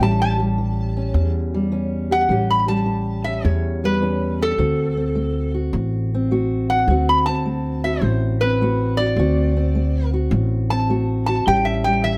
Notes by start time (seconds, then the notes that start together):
0.00 A1 A2 G3 C#4 G4 A5
0.22 A5
0.40 G3
0.58 E3
0.97 C#4
1.14 E2
1.54 G3
1.72 E3 C#4
2.11 G4 F#5
2.29 A1 A2 G3 C#4 G4
2.50 B5
2.68 G3 A5
2.86 E3
3.24 C#4 E5
3.44 E2 C#5
3.84 G3 B4
4.02 E3 C#4
4.41 G4 A4
4.58 D2 D3 C4 F#4
4.97 C4
5.15 A3
5.54 F#4
5.73 A1 A2
6.14 C4
6.31 A3 F#4
6.70 F#4 F#5
6.88 D2 D3 C4 F#4
7.09 B5
7.26 C4 A5
7.46 A3
7.84 F#4 E5
8.01 A1 A2 C5
8.41 C4 B4
8.61 A3 F#4
8.97 F#4 D5
9.16 D2 D3 C4 F#4
9.57 C4
9.75 A3
10.14 F#4
10.31 A1 A2
10.70 C4 A5
10.90 A3 F#4
11.26 F#4 A5
11.46 A1 A2 G3 C#4 G4 G5
11.65 E5
11.84 G3 G5
12.04 E3 E5